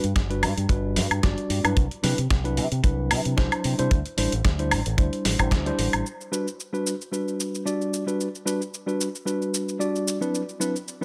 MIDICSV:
0, 0, Header, 1, 4, 480
1, 0, Start_track
1, 0, Tempo, 535714
1, 1583, Time_signature, 4, 2, 24, 8
1, 9897, End_track
2, 0, Start_track
2, 0, Title_t, "Tine electric piano"
2, 0, Program_c, 0, 4
2, 265, Note_on_c, 0, 55, 80
2, 267, Note_on_c, 0, 62, 69
2, 271, Note_on_c, 0, 66, 72
2, 272, Note_on_c, 0, 71, 87
2, 447, Note_off_c, 0, 55, 0
2, 448, Note_off_c, 0, 62, 0
2, 450, Note_off_c, 0, 66, 0
2, 451, Note_off_c, 0, 71, 0
2, 617, Note_on_c, 0, 55, 74
2, 617, Note_on_c, 0, 62, 67
2, 621, Note_on_c, 0, 66, 65
2, 623, Note_on_c, 0, 71, 86
2, 1073, Note_off_c, 0, 55, 0
2, 1074, Note_off_c, 0, 62, 0
2, 1076, Note_off_c, 0, 66, 0
2, 1077, Note_off_c, 0, 71, 0
2, 1100, Note_on_c, 0, 55, 83
2, 1102, Note_on_c, 0, 62, 74
2, 1106, Note_on_c, 0, 66, 76
2, 1110, Note_on_c, 0, 74, 92
2, 1440, Note_off_c, 0, 55, 0
2, 1442, Note_off_c, 0, 62, 0
2, 1444, Note_off_c, 0, 66, 0
2, 1445, Note_off_c, 0, 74, 0
2, 1467, Note_on_c, 0, 54, 75
2, 1469, Note_on_c, 0, 62, 69
2, 1473, Note_on_c, 0, 64, 66
2, 1476, Note_on_c, 0, 71, 80
2, 1648, Note_off_c, 0, 54, 0
2, 1649, Note_off_c, 0, 62, 0
2, 1651, Note_off_c, 0, 64, 0
2, 1653, Note_off_c, 0, 71, 0
2, 1816, Note_on_c, 0, 54, 82
2, 1819, Note_on_c, 0, 62, 75
2, 1821, Note_on_c, 0, 64, 78
2, 1824, Note_on_c, 0, 71, 96
2, 1944, Note_off_c, 0, 54, 0
2, 1945, Note_off_c, 0, 62, 0
2, 1946, Note_off_c, 0, 64, 0
2, 1948, Note_off_c, 0, 71, 0
2, 2186, Note_on_c, 0, 54, 81
2, 2189, Note_on_c, 0, 62, 76
2, 2191, Note_on_c, 0, 64, 74
2, 2195, Note_on_c, 0, 71, 85
2, 2368, Note_off_c, 0, 54, 0
2, 2369, Note_off_c, 0, 62, 0
2, 2370, Note_off_c, 0, 64, 0
2, 2372, Note_off_c, 0, 71, 0
2, 2535, Note_on_c, 0, 54, 77
2, 2538, Note_on_c, 0, 62, 67
2, 2542, Note_on_c, 0, 64, 73
2, 2544, Note_on_c, 0, 71, 82
2, 2993, Note_off_c, 0, 54, 0
2, 2994, Note_off_c, 0, 62, 0
2, 2996, Note_off_c, 0, 64, 0
2, 2997, Note_off_c, 0, 71, 0
2, 3015, Note_on_c, 0, 54, 82
2, 3020, Note_on_c, 0, 62, 77
2, 3021, Note_on_c, 0, 64, 77
2, 3025, Note_on_c, 0, 72, 92
2, 3358, Note_off_c, 0, 54, 0
2, 3361, Note_off_c, 0, 62, 0
2, 3361, Note_off_c, 0, 64, 0
2, 3363, Note_off_c, 0, 72, 0
2, 3389, Note_on_c, 0, 55, 74
2, 3391, Note_on_c, 0, 62, 73
2, 3395, Note_on_c, 0, 64, 73
2, 3399, Note_on_c, 0, 72, 89
2, 3569, Note_off_c, 0, 55, 0
2, 3571, Note_off_c, 0, 62, 0
2, 3573, Note_off_c, 0, 64, 0
2, 3574, Note_off_c, 0, 72, 0
2, 3740, Note_on_c, 0, 55, 85
2, 3743, Note_on_c, 0, 62, 82
2, 3746, Note_on_c, 0, 64, 78
2, 3749, Note_on_c, 0, 72, 91
2, 3866, Note_off_c, 0, 55, 0
2, 3867, Note_off_c, 0, 62, 0
2, 3869, Note_off_c, 0, 64, 0
2, 3870, Note_off_c, 0, 72, 0
2, 4111, Note_on_c, 0, 55, 81
2, 4115, Note_on_c, 0, 62, 73
2, 4116, Note_on_c, 0, 64, 74
2, 4120, Note_on_c, 0, 72, 89
2, 4290, Note_off_c, 0, 55, 0
2, 4292, Note_off_c, 0, 62, 0
2, 4293, Note_off_c, 0, 64, 0
2, 4295, Note_off_c, 0, 72, 0
2, 4458, Note_on_c, 0, 55, 77
2, 4461, Note_on_c, 0, 62, 70
2, 4464, Note_on_c, 0, 64, 71
2, 4465, Note_on_c, 0, 72, 82
2, 4805, Note_off_c, 0, 55, 0
2, 4806, Note_off_c, 0, 62, 0
2, 4808, Note_off_c, 0, 64, 0
2, 4808, Note_off_c, 0, 72, 0
2, 4830, Note_on_c, 0, 55, 75
2, 4834, Note_on_c, 0, 62, 66
2, 4835, Note_on_c, 0, 64, 67
2, 4839, Note_on_c, 0, 72, 82
2, 5040, Note_off_c, 0, 55, 0
2, 5042, Note_off_c, 0, 62, 0
2, 5043, Note_off_c, 0, 64, 0
2, 5045, Note_off_c, 0, 72, 0
2, 5071, Note_on_c, 0, 55, 93
2, 5073, Note_on_c, 0, 62, 79
2, 5078, Note_on_c, 0, 64, 78
2, 5080, Note_on_c, 0, 72, 97
2, 5408, Note_off_c, 0, 55, 0
2, 5410, Note_off_c, 0, 62, 0
2, 5412, Note_off_c, 0, 64, 0
2, 5413, Note_off_c, 0, 72, 0
2, 5658, Note_on_c, 0, 55, 74
2, 5659, Note_on_c, 0, 62, 70
2, 5662, Note_on_c, 0, 66, 65
2, 5666, Note_on_c, 0, 71, 87
2, 5785, Note_off_c, 0, 55, 0
2, 5785, Note_off_c, 0, 62, 0
2, 5787, Note_off_c, 0, 66, 0
2, 5789, Note_off_c, 0, 71, 0
2, 6027, Note_on_c, 0, 55, 70
2, 6029, Note_on_c, 0, 62, 68
2, 6034, Note_on_c, 0, 66, 67
2, 6037, Note_on_c, 0, 71, 81
2, 6209, Note_off_c, 0, 55, 0
2, 6210, Note_off_c, 0, 62, 0
2, 6212, Note_off_c, 0, 66, 0
2, 6213, Note_off_c, 0, 71, 0
2, 6378, Note_on_c, 0, 55, 64
2, 6381, Note_on_c, 0, 62, 60
2, 6383, Note_on_c, 0, 66, 58
2, 6386, Note_on_c, 0, 71, 72
2, 6834, Note_off_c, 0, 55, 0
2, 6835, Note_off_c, 0, 62, 0
2, 6837, Note_off_c, 0, 66, 0
2, 6838, Note_off_c, 0, 71, 0
2, 6858, Note_on_c, 0, 55, 71
2, 6859, Note_on_c, 0, 62, 69
2, 6863, Note_on_c, 0, 66, 67
2, 6866, Note_on_c, 0, 74, 80
2, 7200, Note_off_c, 0, 55, 0
2, 7200, Note_off_c, 0, 62, 0
2, 7202, Note_off_c, 0, 66, 0
2, 7203, Note_off_c, 0, 74, 0
2, 7226, Note_on_c, 0, 55, 67
2, 7229, Note_on_c, 0, 62, 64
2, 7232, Note_on_c, 0, 66, 63
2, 7234, Note_on_c, 0, 71, 75
2, 7408, Note_off_c, 0, 55, 0
2, 7409, Note_off_c, 0, 62, 0
2, 7411, Note_off_c, 0, 66, 0
2, 7412, Note_off_c, 0, 71, 0
2, 7574, Note_on_c, 0, 55, 74
2, 7577, Note_on_c, 0, 62, 72
2, 7581, Note_on_c, 0, 66, 70
2, 7583, Note_on_c, 0, 71, 84
2, 7703, Note_off_c, 0, 55, 0
2, 7704, Note_off_c, 0, 62, 0
2, 7706, Note_off_c, 0, 66, 0
2, 7707, Note_off_c, 0, 71, 0
2, 7945, Note_on_c, 0, 55, 76
2, 7947, Note_on_c, 0, 62, 70
2, 7950, Note_on_c, 0, 66, 66
2, 7954, Note_on_c, 0, 71, 77
2, 8127, Note_off_c, 0, 55, 0
2, 8128, Note_off_c, 0, 62, 0
2, 8130, Note_off_c, 0, 66, 0
2, 8132, Note_off_c, 0, 71, 0
2, 8291, Note_on_c, 0, 55, 67
2, 8296, Note_on_c, 0, 62, 64
2, 8299, Note_on_c, 0, 66, 62
2, 8302, Note_on_c, 0, 71, 77
2, 8751, Note_off_c, 0, 55, 0
2, 8753, Note_off_c, 0, 62, 0
2, 8755, Note_off_c, 0, 66, 0
2, 8756, Note_off_c, 0, 71, 0
2, 8774, Note_on_c, 0, 55, 76
2, 8777, Note_on_c, 0, 62, 68
2, 8781, Note_on_c, 0, 66, 68
2, 8782, Note_on_c, 0, 74, 84
2, 9118, Note_off_c, 0, 55, 0
2, 9119, Note_off_c, 0, 62, 0
2, 9121, Note_off_c, 0, 66, 0
2, 9121, Note_off_c, 0, 74, 0
2, 9144, Note_on_c, 0, 54, 67
2, 9147, Note_on_c, 0, 60, 63
2, 9150, Note_on_c, 0, 62, 66
2, 9151, Note_on_c, 0, 64, 61
2, 9154, Note_on_c, 0, 71, 77
2, 9327, Note_off_c, 0, 54, 0
2, 9328, Note_off_c, 0, 60, 0
2, 9330, Note_off_c, 0, 62, 0
2, 9331, Note_off_c, 0, 64, 0
2, 9332, Note_off_c, 0, 71, 0
2, 9495, Note_on_c, 0, 54, 81
2, 9497, Note_on_c, 0, 60, 71
2, 9498, Note_on_c, 0, 62, 73
2, 9501, Note_on_c, 0, 64, 76
2, 9504, Note_on_c, 0, 71, 87
2, 9623, Note_off_c, 0, 54, 0
2, 9624, Note_off_c, 0, 60, 0
2, 9625, Note_off_c, 0, 62, 0
2, 9626, Note_off_c, 0, 64, 0
2, 9628, Note_off_c, 0, 71, 0
2, 9865, Note_on_c, 0, 54, 77
2, 9867, Note_on_c, 0, 60, 68
2, 9869, Note_on_c, 0, 62, 67
2, 9897, Note_off_c, 0, 54, 0
2, 9897, Note_off_c, 0, 60, 0
2, 9897, Note_off_c, 0, 62, 0
2, 9897, End_track
3, 0, Start_track
3, 0, Title_t, "Fingered electric bass"
3, 0, Program_c, 1, 33
3, 33, Note_on_c, 1, 43, 80
3, 104, Note_off_c, 1, 43, 0
3, 141, Note_on_c, 1, 31, 91
3, 382, Note_on_c, 1, 43, 81
3, 395, Note_off_c, 1, 31, 0
3, 467, Note_off_c, 1, 43, 0
3, 512, Note_on_c, 1, 43, 89
3, 584, Note_off_c, 1, 43, 0
3, 620, Note_on_c, 1, 31, 91
3, 862, Note_on_c, 1, 43, 83
3, 876, Note_off_c, 1, 31, 0
3, 947, Note_off_c, 1, 43, 0
3, 991, Note_on_c, 1, 43, 77
3, 1063, Note_off_c, 1, 43, 0
3, 1105, Note_on_c, 1, 31, 85
3, 1189, Note_off_c, 1, 31, 0
3, 1340, Note_on_c, 1, 43, 88
3, 1426, Note_off_c, 1, 43, 0
3, 1472, Note_on_c, 1, 43, 76
3, 1544, Note_off_c, 1, 43, 0
3, 1584, Note_on_c, 1, 36, 94
3, 1668, Note_off_c, 1, 36, 0
3, 1822, Note_on_c, 1, 48, 99
3, 1907, Note_off_c, 1, 48, 0
3, 1954, Note_on_c, 1, 48, 84
3, 2025, Note_off_c, 1, 48, 0
3, 2065, Note_on_c, 1, 36, 93
3, 2305, Note_on_c, 1, 48, 78
3, 2318, Note_off_c, 1, 36, 0
3, 2388, Note_off_c, 1, 48, 0
3, 2433, Note_on_c, 1, 48, 91
3, 2504, Note_off_c, 1, 48, 0
3, 2541, Note_on_c, 1, 36, 94
3, 2784, Note_on_c, 1, 48, 87
3, 2797, Note_off_c, 1, 36, 0
3, 2868, Note_off_c, 1, 48, 0
3, 2916, Note_on_c, 1, 48, 76
3, 2986, Note_off_c, 1, 48, 0
3, 3026, Note_on_c, 1, 36, 91
3, 3109, Note_off_c, 1, 36, 0
3, 3266, Note_on_c, 1, 48, 87
3, 3349, Note_off_c, 1, 48, 0
3, 3397, Note_on_c, 1, 48, 76
3, 3466, Note_off_c, 1, 48, 0
3, 3505, Note_on_c, 1, 38, 91
3, 3588, Note_off_c, 1, 38, 0
3, 3745, Note_on_c, 1, 33, 97
3, 3829, Note_off_c, 1, 33, 0
3, 3876, Note_on_c, 1, 33, 83
3, 3946, Note_off_c, 1, 33, 0
3, 3983, Note_on_c, 1, 38, 91
3, 4223, Note_on_c, 1, 33, 78
3, 4237, Note_off_c, 1, 38, 0
3, 4308, Note_off_c, 1, 33, 0
3, 4356, Note_on_c, 1, 33, 84
3, 4426, Note_off_c, 1, 33, 0
3, 4463, Note_on_c, 1, 38, 86
3, 4547, Note_off_c, 1, 38, 0
3, 4706, Note_on_c, 1, 33, 82
3, 4789, Note_off_c, 1, 33, 0
3, 4830, Note_on_c, 1, 33, 100
3, 4903, Note_off_c, 1, 33, 0
3, 4939, Note_on_c, 1, 38, 75
3, 5104, Note_off_c, 1, 38, 0
3, 5185, Note_on_c, 1, 33, 93
3, 5269, Note_off_c, 1, 33, 0
3, 5317, Note_on_c, 1, 33, 73
3, 5386, Note_off_c, 1, 33, 0
3, 9897, End_track
4, 0, Start_track
4, 0, Title_t, "Drums"
4, 33, Note_on_c, 9, 42, 50
4, 123, Note_off_c, 9, 42, 0
4, 141, Note_on_c, 9, 36, 109
4, 142, Note_on_c, 9, 38, 100
4, 142, Note_on_c, 9, 42, 59
4, 230, Note_off_c, 9, 36, 0
4, 232, Note_off_c, 9, 38, 0
4, 232, Note_off_c, 9, 42, 0
4, 274, Note_on_c, 9, 42, 35
4, 364, Note_off_c, 9, 42, 0
4, 383, Note_on_c, 9, 46, 82
4, 383, Note_on_c, 9, 76, 80
4, 473, Note_off_c, 9, 46, 0
4, 473, Note_off_c, 9, 76, 0
4, 515, Note_on_c, 9, 42, 47
4, 605, Note_off_c, 9, 42, 0
4, 620, Note_on_c, 9, 36, 103
4, 624, Note_on_c, 9, 42, 61
4, 710, Note_off_c, 9, 36, 0
4, 714, Note_off_c, 9, 42, 0
4, 863, Note_on_c, 9, 46, 102
4, 864, Note_on_c, 9, 38, 61
4, 953, Note_off_c, 9, 38, 0
4, 953, Note_off_c, 9, 46, 0
4, 995, Note_on_c, 9, 42, 52
4, 995, Note_on_c, 9, 76, 85
4, 1084, Note_off_c, 9, 42, 0
4, 1084, Note_off_c, 9, 76, 0
4, 1104, Note_on_c, 9, 38, 118
4, 1104, Note_on_c, 9, 42, 64
4, 1106, Note_on_c, 9, 36, 105
4, 1194, Note_off_c, 9, 38, 0
4, 1194, Note_off_c, 9, 42, 0
4, 1196, Note_off_c, 9, 36, 0
4, 1234, Note_on_c, 9, 42, 35
4, 1324, Note_off_c, 9, 42, 0
4, 1344, Note_on_c, 9, 46, 87
4, 1434, Note_off_c, 9, 46, 0
4, 1475, Note_on_c, 9, 42, 50
4, 1475, Note_on_c, 9, 76, 82
4, 1565, Note_off_c, 9, 42, 0
4, 1565, Note_off_c, 9, 76, 0
4, 1583, Note_on_c, 9, 36, 117
4, 1584, Note_on_c, 9, 42, 62
4, 1673, Note_off_c, 9, 36, 0
4, 1673, Note_off_c, 9, 42, 0
4, 1715, Note_on_c, 9, 42, 38
4, 1805, Note_off_c, 9, 42, 0
4, 1824, Note_on_c, 9, 38, 58
4, 1824, Note_on_c, 9, 46, 94
4, 1914, Note_off_c, 9, 38, 0
4, 1914, Note_off_c, 9, 46, 0
4, 1954, Note_on_c, 9, 42, 53
4, 2044, Note_off_c, 9, 42, 0
4, 2065, Note_on_c, 9, 36, 118
4, 2065, Note_on_c, 9, 38, 104
4, 2065, Note_on_c, 9, 42, 60
4, 2155, Note_off_c, 9, 36, 0
4, 2155, Note_off_c, 9, 38, 0
4, 2155, Note_off_c, 9, 42, 0
4, 2196, Note_on_c, 9, 42, 35
4, 2286, Note_off_c, 9, 42, 0
4, 2305, Note_on_c, 9, 46, 81
4, 2394, Note_off_c, 9, 46, 0
4, 2434, Note_on_c, 9, 42, 46
4, 2524, Note_off_c, 9, 42, 0
4, 2542, Note_on_c, 9, 36, 100
4, 2544, Note_on_c, 9, 42, 67
4, 2631, Note_off_c, 9, 36, 0
4, 2633, Note_off_c, 9, 42, 0
4, 2784, Note_on_c, 9, 46, 108
4, 2784, Note_on_c, 9, 76, 85
4, 2874, Note_off_c, 9, 46, 0
4, 2874, Note_off_c, 9, 76, 0
4, 2915, Note_on_c, 9, 42, 50
4, 3004, Note_off_c, 9, 42, 0
4, 3025, Note_on_c, 9, 38, 112
4, 3025, Note_on_c, 9, 42, 66
4, 3026, Note_on_c, 9, 36, 107
4, 3114, Note_off_c, 9, 42, 0
4, 3115, Note_off_c, 9, 36, 0
4, 3115, Note_off_c, 9, 38, 0
4, 3154, Note_on_c, 9, 42, 38
4, 3154, Note_on_c, 9, 76, 76
4, 3244, Note_off_c, 9, 42, 0
4, 3244, Note_off_c, 9, 76, 0
4, 3263, Note_on_c, 9, 46, 87
4, 3353, Note_off_c, 9, 46, 0
4, 3394, Note_on_c, 9, 42, 53
4, 3483, Note_off_c, 9, 42, 0
4, 3503, Note_on_c, 9, 42, 67
4, 3504, Note_on_c, 9, 36, 120
4, 3593, Note_off_c, 9, 42, 0
4, 3594, Note_off_c, 9, 36, 0
4, 3634, Note_on_c, 9, 42, 38
4, 3723, Note_off_c, 9, 42, 0
4, 3743, Note_on_c, 9, 46, 98
4, 3832, Note_off_c, 9, 46, 0
4, 3874, Note_on_c, 9, 42, 55
4, 3964, Note_off_c, 9, 42, 0
4, 3983, Note_on_c, 9, 36, 107
4, 3984, Note_on_c, 9, 42, 68
4, 3985, Note_on_c, 9, 38, 107
4, 4073, Note_off_c, 9, 36, 0
4, 4074, Note_off_c, 9, 38, 0
4, 4074, Note_off_c, 9, 42, 0
4, 4114, Note_on_c, 9, 42, 38
4, 4204, Note_off_c, 9, 42, 0
4, 4224, Note_on_c, 9, 46, 84
4, 4224, Note_on_c, 9, 76, 79
4, 4313, Note_off_c, 9, 46, 0
4, 4313, Note_off_c, 9, 76, 0
4, 4353, Note_on_c, 9, 42, 51
4, 4443, Note_off_c, 9, 42, 0
4, 4462, Note_on_c, 9, 36, 111
4, 4464, Note_on_c, 9, 42, 68
4, 4552, Note_off_c, 9, 36, 0
4, 4554, Note_off_c, 9, 42, 0
4, 4595, Note_on_c, 9, 42, 36
4, 4685, Note_off_c, 9, 42, 0
4, 4705, Note_on_c, 9, 38, 67
4, 4705, Note_on_c, 9, 46, 113
4, 4794, Note_off_c, 9, 46, 0
4, 4795, Note_off_c, 9, 38, 0
4, 4831, Note_on_c, 9, 36, 51
4, 4834, Note_on_c, 9, 42, 54
4, 4834, Note_on_c, 9, 76, 76
4, 4921, Note_off_c, 9, 36, 0
4, 4924, Note_off_c, 9, 42, 0
4, 4924, Note_off_c, 9, 76, 0
4, 4939, Note_on_c, 9, 36, 96
4, 4944, Note_on_c, 9, 42, 68
4, 4945, Note_on_c, 9, 38, 123
4, 5029, Note_off_c, 9, 36, 0
4, 5034, Note_off_c, 9, 38, 0
4, 5034, Note_off_c, 9, 42, 0
4, 5074, Note_on_c, 9, 42, 35
4, 5164, Note_off_c, 9, 42, 0
4, 5184, Note_on_c, 9, 46, 90
4, 5274, Note_off_c, 9, 46, 0
4, 5315, Note_on_c, 9, 42, 53
4, 5315, Note_on_c, 9, 76, 78
4, 5405, Note_off_c, 9, 42, 0
4, 5405, Note_off_c, 9, 76, 0
4, 5432, Note_on_c, 9, 82, 37
4, 5522, Note_off_c, 9, 82, 0
4, 5563, Note_on_c, 9, 82, 19
4, 5653, Note_off_c, 9, 82, 0
4, 5673, Note_on_c, 9, 82, 67
4, 5763, Note_off_c, 9, 82, 0
4, 5802, Note_on_c, 9, 82, 31
4, 5892, Note_off_c, 9, 82, 0
4, 5913, Note_on_c, 9, 82, 37
4, 6002, Note_off_c, 9, 82, 0
4, 6043, Note_on_c, 9, 82, 19
4, 6133, Note_off_c, 9, 82, 0
4, 6152, Note_on_c, 9, 82, 69
4, 6242, Note_off_c, 9, 82, 0
4, 6284, Note_on_c, 9, 82, 27
4, 6374, Note_off_c, 9, 82, 0
4, 6392, Note_on_c, 9, 82, 38
4, 6482, Note_off_c, 9, 82, 0
4, 6524, Note_on_c, 9, 82, 19
4, 6613, Note_off_c, 9, 82, 0
4, 6631, Note_on_c, 9, 82, 70
4, 6721, Note_off_c, 9, 82, 0
4, 6761, Note_on_c, 9, 82, 29
4, 6851, Note_off_c, 9, 82, 0
4, 6871, Note_on_c, 9, 82, 39
4, 6960, Note_off_c, 9, 82, 0
4, 7001, Note_on_c, 9, 82, 18
4, 7091, Note_off_c, 9, 82, 0
4, 7110, Note_on_c, 9, 82, 67
4, 7199, Note_off_c, 9, 82, 0
4, 7242, Note_on_c, 9, 82, 30
4, 7331, Note_off_c, 9, 82, 0
4, 7352, Note_on_c, 9, 82, 38
4, 7441, Note_off_c, 9, 82, 0
4, 7482, Note_on_c, 9, 82, 19
4, 7572, Note_off_c, 9, 82, 0
4, 7591, Note_on_c, 9, 82, 67
4, 7681, Note_off_c, 9, 82, 0
4, 7721, Note_on_c, 9, 82, 30
4, 7811, Note_off_c, 9, 82, 0
4, 7830, Note_on_c, 9, 82, 36
4, 7920, Note_off_c, 9, 82, 0
4, 7961, Note_on_c, 9, 82, 19
4, 8051, Note_off_c, 9, 82, 0
4, 8070, Note_on_c, 9, 82, 63
4, 8160, Note_off_c, 9, 82, 0
4, 8200, Note_on_c, 9, 82, 27
4, 8290, Note_off_c, 9, 82, 0
4, 8309, Note_on_c, 9, 82, 39
4, 8398, Note_off_c, 9, 82, 0
4, 8440, Note_on_c, 9, 82, 19
4, 8529, Note_off_c, 9, 82, 0
4, 8549, Note_on_c, 9, 82, 71
4, 8638, Note_off_c, 9, 82, 0
4, 8678, Note_on_c, 9, 82, 30
4, 8767, Note_off_c, 9, 82, 0
4, 8788, Note_on_c, 9, 82, 40
4, 8878, Note_off_c, 9, 82, 0
4, 8920, Note_on_c, 9, 82, 19
4, 9009, Note_off_c, 9, 82, 0
4, 9028, Note_on_c, 9, 82, 67
4, 9118, Note_off_c, 9, 82, 0
4, 9159, Note_on_c, 9, 82, 29
4, 9248, Note_off_c, 9, 82, 0
4, 9270, Note_on_c, 9, 82, 37
4, 9359, Note_off_c, 9, 82, 0
4, 9398, Note_on_c, 9, 82, 20
4, 9488, Note_off_c, 9, 82, 0
4, 9508, Note_on_c, 9, 82, 64
4, 9598, Note_off_c, 9, 82, 0
4, 9640, Note_on_c, 9, 82, 30
4, 9730, Note_off_c, 9, 82, 0
4, 9748, Note_on_c, 9, 82, 36
4, 9838, Note_off_c, 9, 82, 0
4, 9897, End_track
0, 0, End_of_file